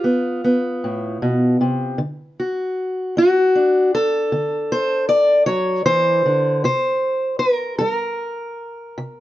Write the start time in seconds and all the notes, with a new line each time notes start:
Already playing: G2 F4
0.04 B3
0.44 B3
0.84 A2
1.22 B2
1.61 C3
1.98 D3
2.40 F#4
3.17 D4 F#4
3.55 D4
3.95 A4
4.32 D3
4.72 C5
5.09 D5
5.46 F#3 C#5
5.86 E3 C5
6.26 D3
6.64 C3 C5
7.39 A#4
7.79 G3 A#4
8.98 C3